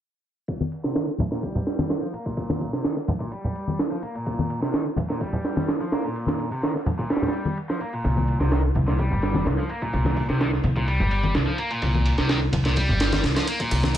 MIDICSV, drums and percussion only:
0, 0, Header, 1, 2, 480
1, 0, Start_track
1, 0, Key_signature, -3, "minor"
1, 0, Tempo, 472441
1, 492, Time_signature, 4, 2, 24, 8
1, 14202, End_track
2, 0, Start_track
2, 0, Title_t, "Drums"
2, 489, Note_on_c, 9, 51, 82
2, 490, Note_on_c, 9, 42, 30
2, 491, Note_on_c, 9, 36, 104
2, 591, Note_off_c, 9, 51, 0
2, 592, Note_off_c, 9, 36, 0
2, 592, Note_off_c, 9, 42, 0
2, 616, Note_on_c, 9, 63, 79
2, 717, Note_off_c, 9, 63, 0
2, 729, Note_on_c, 9, 51, 61
2, 730, Note_on_c, 9, 42, 70
2, 831, Note_off_c, 9, 42, 0
2, 831, Note_off_c, 9, 51, 0
2, 855, Note_on_c, 9, 38, 47
2, 855, Note_on_c, 9, 42, 39
2, 957, Note_off_c, 9, 38, 0
2, 957, Note_off_c, 9, 42, 0
2, 970, Note_on_c, 9, 38, 106
2, 970, Note_on_c, 9, 42, 30
2, 970, Note_on_c, 9, 51, 78
2, 1072, Note_off_c, 9, 38, 0
2, 1072, Note_off_c, 9, 42, 0
2, 1072, Note_off_c, 9, 51, 0
2, 1201, Note_on_c, 9, 63, 62
2, 1210, Note_on_c, 9, 42, 67
2, 1212, Note_on_c, 9, 51, 62
2, 1215, Note_on_c, 9, 64, 88
2, 1303, Note_off_c, 9, 63, 0
2, 1312, Note_off_c, 9, 42, 0
2, 1313, Note_off_c, 9, 51, 0
2, 1316, Note_off_c, 9, 64, 0
2, 1337, Note_on_c, 9, 38, 36
2, 1337, Note_on_c, 9, 42, 40
2, 1439, Note_off_c, 9, 38, 0
2, 1439, Note_off_c, 9, 42, 0
2, 1451, Note_on_c, 9, 36, 98
2, 1451, Note_on_c, 9, 42, 30
2, 1452, Note_on_c, 9, 51, 77
2, 1553, Note_off_c, 9, 36, 0
2, 1553, Note_off_c, 9, 42, 0
2, 1553, Note_off_c, 9, 51, 0
2, 1577, Note_on_c, 9, 64, 75
2, 1679, Note_off_c, 9, 64, 0
2, 1690, Note_on_c, 9, 42, 69
2, 1694, Note_on_c, 9, 38, 49
2, 1694, Note_on_c, 9, 51, 61
2, 1791, Note_off_c, 9, 42, 0
2, 1796, Note_off_c, 9, 38, 0
2, 1796, Note_off_c, 9, 51, 0
2, 1815, Note_on_c, 9, 63, 86
2, 1816, Note_on_c, 9, 38, 50
2, 1818, Note_on_c, 9, 42, 39
2, 1917, Note_off_c, 9, 38, 0
2, 1917, Note_off_c, 9, 63, 0
2, 1919, Note_off_c, 9, 42, 0
2, 1930, Note_on_c, 9, 38, 101
2, 1930, Note_on_c, 9, 51, 80
2, 1932, Note_on_c, 9, 42, 30
2, 2032, Note_off_c, 9, 38, 0
2, 2032, Note_off_c, 9, 51, 0
2, 2034, Note_off_c, 9, 42, 0
2, 2056, Note_on_c, 9, 51, 40
2, 2157, Note_off_c, 9, 51, 0
2, 2171, Note_on_c, 9, 42, 67
2, 2173, Note_on_c, 9, 51, 63
2, 2273, Note_off_c, 9, 42, 0
2, 2274, Note_off_c, 9, 51, 0
2, 2296, Note_on_c, 9, 36, 84
2, 2296, Note_on_c, 9, 42, 41
2, 2398, Note_off_c, 9, 36, 0
2, 2398, Note_off_c, 9, 42, 0
2, 2409, Note_on_c, 9, 51, 82
2, 2411, Note_on_c, 9, 36, 103
2, 2412, Note_on_c, 9, 42, 30
2, 2510, Note_off_c, 9, 51, 0
2, 2512, Note_off_c, 9, 36, 0
2, 2513, Note_off_c, 9, 42, 0
2, 2536, Note_on_c, 9, 38, 53
2, 2536, Note_on_c, 9, 63, 89
2, 2638, Note_off_c, 9, 38, 0
2, 2638, Note_off_c, 9, 63, 0
2, 2651, Note_on_c, 9, 36, 88
2, 2651, Note_on_c, 9, 42, 71
2, 2651, Note_on_c, 9, 46, 73
2, 2752, Note_off_c, 9, 42, 0
2, 2753, Note_off_c, 9, 36, 0
2, 2753, Note_off_c, 9, 46, 0
2, 2776, Note_on_c, 9, 38, 43
2, 2777, Note_on_c, 9, 42, 39
2, 2878, Note_off_c, 9, 38, 0
2, 2878, Note_off_c, 9, 42, 0
2, 2889, Note_on_c, 9, 38, 103
2, 2889, Note_on_c, 9, 51, 78
2, 2891, Note_on_c, 9, 42, 31
2, 2991, Note_off_c, 9, 38, 0
2, 2991, Note_off_c, 9, 51, 0
2, 2993, Note_off_c, 9, 42, 0
2, 3015, Note_on_c, 9, 38, 34
2, 3116, Note_off_c, 9, 38, 0
2, 3128, Note_on_c, 9, 51, 64
2, 3130, Note_on_c, 9, 63, 60
2, 3131, Note_on_c, 9, 64, 90
2, 3134, Note_on_c, 9, 42, 69
2, 3230, Note_off_c, 9, 51, 0
2, 3232, Note_off_c, 9, 63, 0
2, 3232, Note_off_c, 9, 64, 0
2, 3235, Note_off_c, 9, 42, 0
2, 3255, Note_on_c, 9, 36, 84
2, 3259, Note_on_c, 9, 42, 42
2, 3356, Note_off_c, 9, 36, 0
2, 3361, Note_off_c, 9, 42, 0
2, 3369, Note_on_c, 9, 51, 80
2, 3374, Note_on_c, 9, 42, 30
2, 3470, Note_off_c, 9, 51, 0
2, 3476, Note_off_c, 9, 42, 0
2, 3499, Note_on_c, 9, 64, 72
2, 3601, Note_off_c, 9, 64, 0
2, 3611, Note_on_c, 9, 42, 71
2, 3611, Note_on_c, 9, 51, 63
2, 3713, Note_off_c, 9, 42, 0
2, 3713, Note_off_c, 9, 51, 0
2, 3733, Note_on_c, 9, 63, 81
2, 3739, Note_on_c, 9, 42, 41
2, 3835, Note_off_c, 9, 63, 0
2, 3840, Note_off_c, 9, 42, 0
2, 3852, Note_on_c, 9, 42, 29
2, 3854, Note_on_c, 9, 38, 106
2, 3854, Note_on_c, 9, 51, 81
2, 3954, Note_off_c, 9, 42, 0
2, 3955, Note_off_c, 9, 38, 0
2, 3955, Note_off_c, 9, 51, 0
2, 4091, Note_on_c, 9, 42, 72
2, 4093, Note_on_c, 9, 51, 63
2, 4193, Note_off_c, 9, 42, 0
2, 4195, Note_off_c, 9, 51, 0
2, 4216, Note_on_c, 9, 42, 41
2, 4220, Note_on_c, 9, 51, 41
2, 4318, Note_off_c, 9, 42, 0
2, 4321, Note_off_c, 9, 51, 0
2, 4332, Note_on_c, 9, 42, 30
2, 4333, Note_on_c, 9, 36, 101
2, 4333, Note_on_c, 9, 51, 87
2, 4434, Note_off_c, 9, 36, 0
2, 4434, Note_off_c, 9, 42, 0
2, 4434, Note_off_c, 9, 51, 0
2, 4458, Note_on_c, 9, 63, 85
2, 4560, Note_off_c, 9, 63, 0
2, 4570, Note_on_c, 9, 42, 70
2, 4574, Note_on_c, 9, 51, 62
2, 4671, Note_off_c, 9, 42, 0
2, 4675, Note_off_c, 9, 51, 0
2, 4697, Note_on_c, 9, 42, 38
2, 4698, Note_on_c, 9, 38, 48
2, 4799, Note_off_c, 9, 38, 0
2, 4799, Note_off_c, 9, 42, 0
2, 4810, Note_on_c, 9, 42, 29
2, 4813, Note_on_c, 9, 38, 106
2, 4813, Note_on_c, 9, 51, 79
2, 4912, Note_off_c, 9, 42, 0
2, 4915, Note_off_c, 9, 38, 0
2, 4915, Note_off_c, 9, 51, 0
2, 5042, Note_on_c, 9, 63, 65
2, 5046, Note_on_c, 9, 64, 85
2, 5052, Note_on_c, 9, 42, 66
2, 5055, Note_on_c, 9, 51, 62
2, 5143, Note_off_c, 9, 63, 0
2, 5147, Note_off_c, 9, 64, 0
2, 5153, Note_off_c, 9, 42, 0
2, 5157, Note_off_c, 9, 51, 0
2, 5178, Note_on_c, 9, 42, 40
2, 5181, Note_on_c, 9, 38, 37
2, 5280, Note_off_c, 9, 42, 0
2, 5283, Note_off_c, 9, 38, 0
2, 5292, Note_on_c, 9, 51, 77
2, 5293, Note_on_c, 9, 36, 96
2, 5293, Note_on_c, 9, 42, 30
2, 5394, Note_off_c, 9, 42, 0
2, 5394, Note_off_c, 9, 51, 0
2, 5395, Note_off_c, 9, 36, 0
2, 5413, Note_on_c, 9, 64, 71
2, 5514, Note_off_c, 9, 64, 0
2, 5533, Note_on_c, 9, 38, 48
2, 5533, Note_on_c, 9, 42, 66
2, 5533, Note_on_c, 9, 51, 64
2, 5634, Note_off_c, 9, 42, 0
2, 5635, Note_off_c, 9, 38, 0
2, 5635, Note_off_c, 9, 51, 0
2, 5655, Note_on_c, 9, 63, 89
2, 5656, Note_on_c, 9, 42, 39
2, 5659, Note_on_c, 9, 38, 51
2, 5757, Note_off_c, 9, 63, 0
2, 5758, Note_off_c, 9, 42, 0
2, 5761, Note_off_c, 9, 38, 0
2, 5773, Note_on_c, 9, 42, 29
2, 5775, Note_on_c, 9, 38, 105
2, 5775, Note_on_c, 9, 51, 80
2, 5875, Note_off_c, 9, 42, 0
2, 5877, Note_off_c, 9, 38, 0
2, 5877, Note_off_c, 9, 51, 0
2, 5903, Note_on_c, 9, 51, 41
2, 6004, Note_off_c, 9, 51, 0
2, 6013, Note_on_c, 9, 42, 69
2, 6016, Note_on_c, 9, 38, 96
2, 6016, Note_on_c, 9, 51, 75
2, 6115, Note_off_c, 9, 42, 0
2, 6118, Note_off_c, 9, 38, 0
2, 6118, Note_off_c, 9, 51, 0
2, 6136, Note_on_c, 9, 42, 39
2, 6144, Note_on_c, 9, 51, 37
2, 6238, Note_off_c, 9, 42, 0
2, 6246, Note_off_c, 9, 51, 0
2, 6252, Note_on_c, 9, 42, 28
2, 6257, Note_on_c, 9, 51, 59
2, 6353, Note_off_c, 9, 42, 0
2, 6358, Note_off_c, 9, 51, 0
2, 6366, Note_on_c, 9, 63, 92
2, 6383, Note_on_c, 9, 38, 98
2, 6383, Note_on_c, 9, 51, 74
2, 6468, Note_off_c, 9, 63, 0
2, 6485, Note_off_c, 9, 38, 0
2, 6485, Note_off_c, 9, 51, 0
2, 6491, Note_on_c, 9, 42, 66
2, 6498, Note_on_c, 9, 51, 37
2, 6593, Note_off_c, 9, 42, 0
2, 6600, Note_off_c, 9, 51, 0
2, 6616, Note_on_c, 9, 42, 37
2, 6624, Note_on_c, 9, 51, 55
2, 6718, Note_off_c, 9, 42, 0
2, 6726, Note_off_c, 9, 51, 0
2, 6732, Note_on_c, 9, 42, 29
2, 6739, Note_on_c, 9, 38, 103
2, 6739, Note_on_c, 9, 51, 78
2, 6834, Note_off_c, 9, 42, 0
2, 6841, Note_off_c, 9, 38, 0
2, 6841, Note_off_c, 9, 51, 0
2, 6864, Note_on_c, 9, 38, 34
2, 6966, Note_off_c, 9, 38, 0
2, 6971, Note_on_c, 9, 42, 65
2, 6971, Note_on_c, 9, 64, 90
2, 6975, Note_on_c, 9, 63, 61
2, 6976, Note_on_c, 9, 51, 63
2, 7072, Note_off_c, 9, 42, 0
2, 7073, Note_off_c, 9, 64, 0
2, 7077, Note_off_c, 9, 63, 0
2, 7078, Note_off_c, 9, 51, 0
2, 7097, Note_on_c, 9, 42, 39
2, 7100, Note_on_c, 9, 36, 86
2, 7198, Note_off_c, 9, 42, 0
2, 7201, Note_off_c, 9, 36, 0
2, 7210, Note_on_c, 9, 42, 30
2, 7216, Note_on_c, 9, 38, 76
2, 7216, Note_on_c, 9, 51, 60
2, 7280, Note_off_c, 9, 38, 0
2, 7280, Note_off_c, 9, 51, 0
2, 7280, Note_on_c, 9, 38, 77
2, 7280, Note_on_c, 9, 51, 60
2, 7312, Note_off_c, 9, 42, 0
2, 7336, Note_on_c, 9, 64, 69
2, 7343, Note_off_c, 9, 38, 0
2, 7343, Note_off_c, 9, 51, 0
2, 7343, Note_on_c, 9, 38, 85
2, 7343, Note_on_c, 9, 51, 64
2, 7399, Note_off_c, 9, 38, 0
2, 7399, Note_off_c, 9, 51, 0
2, 7399, Note_on_c, 9, 38, 84
2, 7399, Note_on_c, 9, 51, 63
2, 7438, Note_off_c, 9, 64, 0
2, 7449, Note_on_c, 9, 42, 66
2, 7456, Note_off_c, 9, 51, 0
2, 7456, Note_on_c, 9, 51, 65
2, 7501, Note_off_c, 9, 38, 0
2, 7550, Note_off_c, 9, 42, 0
2, 7558, Note_off_c, 9, 51, 0
2, 7570, Note_on_c, 9, 63, 80
2, 7574, Note_on_c, 9, 42, 38
2, 7672, Note_off_c, 9, 63, 0
2, 7676, Note_off_c, 9, 42, 0
2, 7690, Note_on_c, 9, 42, 29
2, 7696, Note_on_c, 9, 51, 57
2, 7791, Note_off_c, 9, 42, 0
2, 7798, Note_off_c, 9, 51, 0
2, 7821, Note_on_c, 9, 38, 45
2, 7923, Note_off_c, 9, 38, 0
2, 7929, Note_on_c, 9, 42, 68
2, 7934, Note_on_c, 9, 51, 63
2, 8031, Note_off_c, 9, 42, 0
2, 8036, Note_off_c, 9, 51, 0
2, 8055, Note_on_c, 9, 42, 39
2, 8060, Note_on_c, 9, 51, 40
2, 8156, Note_off_c, 9, 42, 0
2, 8162, Note_off_c, 9, 51, 0
2, 8171, Note_on_c, 9, 42, 28
2, 8174, Note_on_c, 9, 36, 106
2, 8175, Note_on_c, 9, 51, 85
2, 8273, Note_off_c, 9, 42, 0
2, 8276, Note_off_c, 9, 36, 0
2, 8277, Note_off_c, 9, 51, 0
2, 8298, Note_on_c, 9, 63, 80
2, 8400, Note_off_c, 9, 63, 0
2, 8410, Note_on_c, 9, 42, 67
2, 8415, Note_on_c, 9, 51, 65
2, 8511, Note_off_c, 9, 42, 0
2, 8517, Note_off_c, 9, 51, 0
2, 8537, Note_on_c, 9, 42, 37
2, 8541, Note_on_c, 9, 38, 47
2, 8639, Note_off_c, 9, 42, 0
2, 8643, Note_off_c, 9, 38, 0
2, 8650, Note_on_c, 9, 42, 28
2, 8654, Note_on_c, 9, 38, 104
2, 8654, Note_on_c, 9, 51, 80
2, 8752, Note_off_c, 9, 42, 0
2, 8756, Note_off_c, 9, 38, 0
2, 8756, Note_off_c, 9, 51, 0
2, 8889, Note_on_c, 9, 42, 62
2, 8895, Note_on_c, 9, 51, 64
2, 8895, Note_on_c, 9, 64, 74
2, 8900, Note_on_c, 9, 63, 57
2, 8991, Note_off_c, 9, 42, 0
2, 8996, Note_off_c, 9, 51, 0
2, 8996, Note_off_c, 9, 64, 0
2, 9001, Note_off_c, 9, 63, 0
2, 9016, Note_on_c, 9, 42, 36
2, 9020, Note_on_c, 9, 38, 37
2, 9118, Note_off_c, 9, 42, 0
2, 9122, Note_off_c, 9, 38, 0
2, 9130, Note_on_c, 9, 42, 28
2, 9134, Note_on_c, 9, 36, 96
2, 9137, Note_on_c, 9, 51, 78
2, 9232, Note_off_c, 9, 42, 0
2, 9236, Note_off_c, 9, 36, 0
2, 9239, Note_off_c, 9, 51, 0
2, 9259, Note_on_c, 9, 64, 72
2, 9361, Note_off_c, 9, 64, 0
2, 9369, Note_on_c, 9, 42, 65
2, 9377, Note_on_c, 9, 38, 48
2, 9377, Note_on_c, 9, 51, 63
2, 9470, Note_off_c, 9, 42, 0
2, 9479, Note_off_c, 9, 38, 0
2, 9479, Note_off_c, 9, 51, 0
2, 9492, Note_on_c, 9, 63, 89
2, 9495, Note_on_c, 9, 42, 37
2, 9505, Note_on_c, 9, 38, 51
2, 9594, Note_off_c, 9, 63, 0
2, 9596, Note_off_c, 9, 42, 0
2, 9607, Note_off_c, 9, 38, 0
2, 9609, Note_on_c, 9, 42, 28
2, 9620, Note_on_c, 9, 38, 109
2, 9620, Note_on_c, 9, 51, 80
2, 9711, Note_off_c, 9, 42, 0
2, 9721, Note_off_c, 9, 38, 0
2, 9721, Note_off_c, 9, 51, 0
2, 9744, Note_on_c, 9, 51, 41
2, 9845, Note_off_c, 9, 51, 0
2, 9850, Note_on_c, 9, 42, 65
2, 9858, Note_on_c, 9, 51, 63
2, 9951, Note_off_c, 9, 42, 0
2, 9960, Note_off_c, 9, 51, 0
2, 9974, Note_on_c, 9, 42, 39
2, 9979, Note_on_c, 9, 36, 84
2, 10076, Note_off_c, 9, 42, 0
2, 10081, Note_off_c, 9, 36, 0
2, 10090, Note_on_c, 9, 42, 29
2, 10093, Note_on_c, 9, 36, 107
2, 10096, Note_on_c, 9, 51, 87
2, 10191, Note_off_c, 9, 42, 0
2, 10195, Note_off_c, 9, 36, 0
2, 10197, Note_off_c, 9, 51, 0
2, 10211, Note_on_c, 9, 63, 75
2, 10220, Note_on_c, 9, 38, 55
2, 10312, Note_off_c, 9, 63, 0
2, 10322, Note_off_c, 9, 38, 0
2, 10328, Note_on_c, 9, 42, 66
2, 10333, Note_on_c, 9, 36, 90
2, 10336, Note_on_c, 9, 46, 73
2, 10430, Note_off_c, 9, 42, 0
2, 10435, Note_off_c, 9, 36, 0
2, 10438, Note_off_c, 9, 46, 0
2, 10453, Note_on_c, 9, 42, 37
2, 10462, Note_on_c, 9, 38, 44
2, 10555, Note_off_c, 9, 42, 0
2, 10564, Note_off_c, 9, 38, 0
2, 10568, Note_on_c, 9, 42, 27
2, 10575, Note_on_c, 9, 38, 105
2, 10575, Note_on_c, 9, 51, 81
2, 10669, Note_off_c, 9, 42, 0
2, 10676, Note_off_c, 9, 38, 0
2, 10676, Note_off_c, 9, 51, 0
2, 10702, Note_on_c, 9, 38, 34
2, 10804, Note_off_c, 9, 38, 0
2, 10806, Note_on_c, 9, 42, 63
2, 10807, Note_on_c, 9, 63, 57
2, 10809, Note_on_c, 9, 64, 78
2, 10815, Note_on_c, 9, 51, 65
2, 10908, Note_off_c, 9, 42, 0
2, 10909, Note_off_c, 9, 63, 0
2, 10911, Note_off_c, 9, 64, 0
2, 10917, Note_off_c, 9, 51, 0
2, 10934, Note_on_c, 9, 42, 37
2, 10938, Note_on_c, 9, 36, 90
2, 11035, Note_off_c, 9, 42, 0
2, 11040, Note_off_c, 9, 36, 0
2, 11050, Note_on_c, 9, 42, 29
2, 11053, Note_on_c, 9, 51, 80
2, 11151, Note_off_c, 9, 42, 0
2, 11155, Note_off_c, 9, 51, 0
2, 11176, Note_on_c, 9, 64, 68
2, 11278, Note_off_c, 9, 64, 0
2, 11289, Note_on_c, 9, 42, 65
2, 11293, Note_on_c, 9, 51, 63
2, 11390, Note_off_c, 9, 42, 0
2, 11394, Note_off_c, 9, 51, 0
2, 11413, Note_on_c, 9, 42, 36
2, 11414, Note_on_c, 9, 63, 76
2, 11515, Note_off_c, 9, 42, 0
2, 11516, Note_off_c, 9, 63, 0
2, 11526, Note_on_c, 9, 42, 27
2, 11530, Note_on_c, 9, 38, 108
2, 11530, Note_on_c, 9, 51, 83
2, 11628, Note_off_c, 9, 42, 0
2, 11632, Note_off_c, 9, 38, 0
2, 11632, Note_off_c, 9, 51, 0
2, 11767, Note_on_c, 9, 42, 67
2, 11770, Note_on_c, 9, 51, 64
2, 11869, Note_off_c, 9, 42, 0
2, 11871, Note_off_c, 9, 51, 0
2, 11893, Note_on_c, 9, 42, 38
2, 11896, Note_on_c, 9, 51, 42
2, 11994, Note_off_c, 9, 42, 0
2, 11998, Note_off_c, 9, 51, 0
2, 12008, Note_on_c, 9, 42, 30
2, 12010, Note_on_c, 9, 51, 88
2, 12012, Note_on_c, 9, 36, 107
2, 12110, Note_off_c, 9, 42, 0
2, 12112, Note_off_c, 9, 51, 0
2, 12113, Note_off_c, 9, 36, 0
2, 12138, Note_on_c, 9, 63, 73
2, 12240, Note_off_c, 9, 63, 0
2, 12248, Note_on_c, 9, 42, 66
2, 12253, Note_on_c, 9, 51, 63
2, 12350, Note_off_c, 9, 42, 0
2, 12355, Note_off_c, 9, 51, 0
2, 12374, Note_on_c, 9, 42, 39
2, 12377, Note_on_c, 9, 38, 49
2, 12476, Note_off_c, 9, 42, 0
2, 12479, Note_off_c, 9, 38, 0
2, 12489, Note_on_c, 9, 42, 28
2, 12491, Note_on_c, 9, 38, 104
2, 12491, Note_on_c, 9, 51, 82
2, 12591, Note_off_c, 9, 42, 0
2, 12592, Note_off_c, 9, 38, 0
2, 12592, Note_off_c, 9, 51, 0
2, 12723, Note_on_c, 9, 63, 62
2, 12727, Note_on_c, 9, 64, 91
2, 12729, Note_on_c, 9, 42, 66
2, 12733, Note_on_c, 9, 51, 66
2, 12824, Note_off_c, 9, 63, 0
2, 12829, Note_off_c, 9, 64, 0
2, 12830, Note_off_c, 9, 42, 0
2, 12834, Note_off_c, 9, 51, 0
2, 12853, Note_on_c, 9, 42, 38
2, 12859, Note_on_c, 9, 38, 38
2, 12954, Note_off_c, 9, 42, 0
2, 12960, Note_off_c, 9, 38, 0
2, 12967, Note_on_c, 9, 42, 30
2, 12973, Note_on_c, 9, 36, 100
2, 12974, Note_on_c, 9, 51, 81
2, 13069, Note_off_c, 9, 42, 0
2, 13074, Note_off_c, 9, 36, 0
2, 13075, Note_off_c, 9, 51, 0
2, 13097, Note_on_c, 9, 64, 76
2, 13199, Note_off_c, 9, 64, 0
2, 13209, Note_on_c, 9, 42, 65
2, 13215, Note_on_c, 9, 38, 98
2, 13215, Note_on_c, 9, 51, 72
2, 13311, Note_off_c, 9, 42, 0
2, 13316, Note_off_c, 9, 38, 0
2, 13316, Note_off_c, 9, 51, 0
2, 13334, Note_on_c, 9, 42, 39
2, 13336, Note_on_c, 9, 63, 78
2, 13338, Note_on_c, 9, 38, 100
2, 13338, Note_on_c, 9, 51, 75
2, 13436, Note_off_c, 9, 42, 0
2, 13437, Note_off_c, 9, 63, 0
2, 13439, Note_off_c, 9, 38, 0
2, 13439, Note_off_c, 9, 51, 0
2, 13449, Note_on_c, 9, 42, 28
2, 13453, Note_on_c, 9, 38, 98
2, 13453, Note_on_c, 9, 51, 74
2, 13551, Note_off_c, 9, 42, 0
2, 13555, Note_off_c, 9, 38, 0
2, 13555, Note_off_c, 9, 51, 0
2, 13579, Note_on_c, 9, 38, 101
2, 13579, Note_on_c, 9, 51, 77
2, 13680, Note_off_c, 9, 38, 0
2, 13680, Note_off_c, 9, 51, 0
2, 13690, Note_on_c, 9, 42, 68
2, 13692, Note_on_c, 9, 51, 66
2, 13792, Note_off_c, 9, 42, 0
2, 13794, Note_off_c, 9, 51, 0
2, 13817, Note_on_c, 9, 42, 38
2, 13818, Note_on_c, 9, 36, 90
2, 13919, Note_off_c, 9, 36, 0
2, 13919, Note_off_c, 9, 42, 0
2, 13932, Note_on_c, 9, 42, 31
2, 13933, Note_on_c, 9, 36, 111
2, 13933, Note_on_c, 9, 51, 87
2, 14034, Note_off_c, 9, 42, 0
2, 14035, Note_off_c, 9, 36, 0
2, 14035, Note_off_c, 9, 51, 0
2, 14054, Note_on_c, 9, 63, 84
2, 14059, Note_on_c, 9, 38, 56
2, 14156, Note_off_c, 9, 63, 0
2, 14160, Note_off_c, 9, 38, 0
2, 14170, Note_on_c, 9, 42, 71
2, 14202, Note_off_c, 9, 42, 0
2, 14202, End_track
0, 0, End_of_file